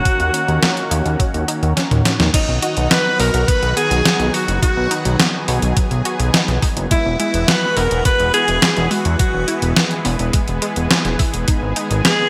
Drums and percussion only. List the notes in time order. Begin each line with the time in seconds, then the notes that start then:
0.05 kick, closed hi-hat
0.20 closed hi-hat
0.34 closed hi-hat
0.48 closed hi-hat
0.63 snare, closed hi-hat
0.77 closed hi-hat
0.91 closed hi-hat
1.06 closed hi-hat
1.20 kick, closed hi-hat
1.34 closed hi-hat
1.48 closed hi-hat
1.63 closed hi-hat
1.77 snare, closed hi-hat
1.91 closed hi-hat, high tom
2.05 snare, closed hi-hat
2.20 snare, closed hi-hat
2.34 kick, closed hi-hat, crash
2.62 closed hi-hat
2.77 closed hi-hat
2.91 snare, closed hi-hat
3.20 open hi-hat
3.34 closed hi-hat
3.48 kick, closed hi-hat
3.63 closed hi-hat
3.77 closed hi-hat
3.91 closed hi-hat
4.05 snare, closed hi-hat
4.20 closed hi-hat
4.34 open hi-hat
4.48 closed hi-hat
4.62 kick, closed hi-hat
4.91 closed hi-hat
5.05 closed hi-hat
5.20 snare, closed hi-hat
5.48 open hi-hat
5.62 closed hi-hat
5.77 kick, closed hi-hat
5.91 closed hi-hat
6.05 closed hi-hat
6.20 closed hi-hat
6.34 snare, closed hi-hat
6.48 snare, closed hi-hat
6.62 kick, open hi-hat
6.77 closed hi-hat
6.91 kick, closed hi-hat
7.20 closed hi-hat
7.34 closed hi-hat
7.48 snare, closed hi-hat
7.77 open hi-hat
7.91 closed hi-hat
8.05 kick, closed hi-hat
8.20 closed hi-hat
8.34 closed hi-hat
8.48 closed hi-hat
8.62 snare, closed hi-hat
8.77 closed hi-hat
8.91 open hi-hat
9.05 closed hi-hat
9.19 kick, closed hi-hat
9.48 closed hi-hat
9.62 closed hi-hat
9.76 snare, closed hi-hat
9.91 closed hi-hat
10.05 open hi-hat
10.19 closed hi-hat
10.33 kick, closed hi-hat
10.48 closed hi-hat
10.62 closed hi-hat
10.76 closed hi-hat
10.91 snare, closed hi-hat
11.05 snare, closed hi-hat
11.19 kick, open hi-hat
11.34 closed hi-hat
11.48 kick, closed hi-hat
11.76 closed hi-hat
11.91 closed hi-hat
12.05 snare, closed hi-hat